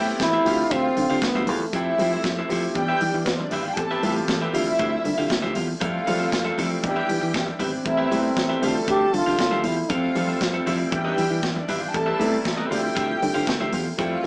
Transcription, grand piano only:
0.00 0.45 A3 medium
0.00 0.47 B3 medium
0.00 0.45 C4 medium
0.00 0.48 E4 medium
0.00 0.46 G4 loud
0.45 1.36 F3 medium
0.45 1.36 A3 medium
0.45 1.36 C4 medium
0.45 1.36 F4 medium
0.45 1.37 G4 medium
1.73 1.96 F3 medium
1.73 1.96 A3 medium
1.73 1.96 C4 medium
1.73 1.96 E4 medium
1.73 1.96 G4 medium
1.98 2.44 F3 medium
1.98 2.44 A3 medium
1.98 2.44 C4 medium
1.98 2.45 E4 medium
1.98 2.45 G4 medium
2.49 2.75 F3 medium
2.49 2.75 A3 medium
2.49 2.75 C4 medium
2.49 2.75 E4 medium
2.49 2.74 G4 medium
2.74 3.66 E3 medium
2.74 3.66 G3 medium
2.74 3.66 B3 medium
2.74 3.66 D4 medium
2.74 3.66 G4 medium
3.76 3.99 E3 medium
3.76 4.00 A3 medium
3.76 4.00 B3 medium
3.76 4.00 C4 medium
3.76 4.00 G4 medium
4.02 4.48 E3 medium
4.02 4.48 A3 medium
4.02 4.48 B3 medium
4.02 4.48 C4 medium
4.02 4.09 F4 medium
4.10 4.52 G4 loud
4.53 5.44 F3 loud
4.53 5.45 G3 medium
4.53 5.45 A3 medium
4.53 5.45 C4 medium
4.53 5.45 E4 loud
5.81 6.04 F3 medium
5.81 6.04 G3 medium
5.81 6.04 A3 medium
5.81 6.04 C4 medium
5.81 6.05 E4 medium
6.06 6.52 F3 medium
6.06 6.52 G3 medium
6.06 6.52 A3 medium
6.06 6.53 C4 medium
6.06 6.53 F4 loud
6.57 6.83 F3 medium
6.57 6.82 G3 medium
6.57 6.83 A3 medium
6.57 6.84 C4 medium
6.57 6.84 E4 medium
6.83 7.74 E3 medium
6.83 7.74 G3 medium
6.83 7.74 B3 medium
6.83 7.75 D4 medium
6.83 6.90 D#4 medium
6.90 7.78 E4 loud
7.85 8.08 C3 medium
7.85 8.09 G3 medium
7.85 8.09 A3 medium
7.85 8.09 B3 medium
7.85 8.09 E4 medium
8.10 8.17 B2 medium
8.10 8.57 G3 medium
8.10 8.57 A3 medium
8.10 8.57 E4 medium
8.10 8.57 B4 medium
8.16 8.59 C3 medium
8.61 8.68 E3 medium
8.61 9.53 G3 medium
8.61 9.53 A3 medium
8.61 9.53 C4 medium
8.61 9.53 E5 loud
8.67 9.56 F3 medium
9.89 10.13 F3 medium
9.89 10.13 G3 medium
9.89 10.13 A3 medium
9.89 10.13 C4 medium
9.89 10.13 E4 medium
10.14 10.60 F3 medium
10.14 10.61 G3 medium
10.14 10.61 A3 medium
10.14 10.61 C4 medium
10.14 10.61 F4 medium
10.66 10.92 F3 medium
10.66 10.90 G3 medium
10.66 10.92 A3 medium
10.66 10.93 C4 medium
10.66 10.91 E4 loud
10.91 11.83 E3 medium
10.91 11.83 G3 medium
10.91 11.83 B3 medium
10.91 11.83 D4 medium
10.91 11.83 E4 medium
11.93 12.16 C3 medium
11.93 12.17 G3 medium
11.93 12.17 A3 medium
11.93 12.17 B3 medium
11.93 12.17 E4 medium
12.19 12.65 C3 loud
12.19 12.65 G3 medium
12.19 12.65 A3 medium
12.19 12.65 B3 medium
12.19 12.66 E4 loud
12.70 13.61 F3 medium
12.70 13.61 G3 medium
12.70 13.62 A3 medium
12.70 13.62 C4 medium
12.70 12.77 D4 medium
12.77 13.65 E4 loud
13.97 14.21 F3 medium
13.97 14.21 G3 medium
13.97 14.21 A3 medium
13.97 14.21 C4 medium
13.97 14.21 E4 medium
14.23 14.26 F3 medium
14.23 14.26 G3 medium

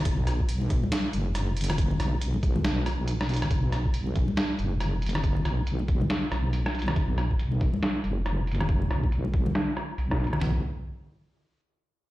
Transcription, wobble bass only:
0.06 0.90 B1 medium
1.13 1.98 F#1 loud
2.00 2.63 B1 loud
2.64 3.49 B1 loud
3.51 4.36 B1 loud
4.59 5.44 F#1 loud
5.45 6.08 B1 loud
6.32 6.95 B1 loud
6.96 7.81 B1 loud
8.04 8.89 F#1 loud
8.90 9.54 B1 loud
9.98 10.40 B1 medium
10.41 10.61 B1 medium

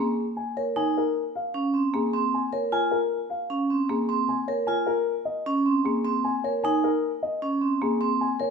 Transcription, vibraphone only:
0.57 0.82 A#4 soft
0.76 1.01 D#4 medium
1.54 1.80 C#4 medium
1.74 1.99 C4 soft
2.13 2.39 C4 medium
2.53 2.78 A#4 medium
2.72 2.98 F4 medium
3.50 3.76 C#4 medium
3.70 3.96 C4 soft
4.09 4.35 C4 medium
4.48 4.74 A#4 medium
4.68 4.93 F4 medium
5.46 5.72 C#4 medium
5.66 5.91 C4 soft
6.05 6.31 C4 medium
6.45 6.70 A#4 soft
6.65 6.90 D#4 medium
7.42 7.68 C#4 medium
7.61 7.87 C4 soft
8.01 8.27 C4 medium
8.40 8.50 A#4 medium

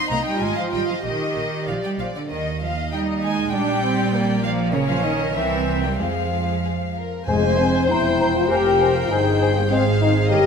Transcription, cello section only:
0.11 0.17 A#3 medium
0.27 0.42 G3 medium
0.42 0.57 G#3 medium
0.58 0.73 F3 medium
0.73 0.80 G3 medium
0.90 0.96 F3 medium
1.05 1.66 D#3 medium
1.68 1.84 F3 medium
1.85 2.00 G3 medium
2.00 2.15 F3 medium
2.16 2.31 D3 medium
2.30 2.61 D#3 medium
2.61 2.69 F3 medium
2.93 3.23 G3 medium
3.24 3.55 G#3 medium
3.55 4.44 G3 medium
4.44 4.74 F3 medium
4.74 4.89 C#3 medium
4.90 5.05 F3 medium
5.04 5.35 D#3 medium
5.36 5.82 E3 medium
5.84 6.00 G3 medium
5.99 6.96 F3 medium
7.28 7.86 F2 medium
7.90 8.49 E2 medium
8.51 9.11 F2 medium
9.11 9.70 G2 medium
9.71 10.30 G#2 medium
10.31 10.46 G2 medium

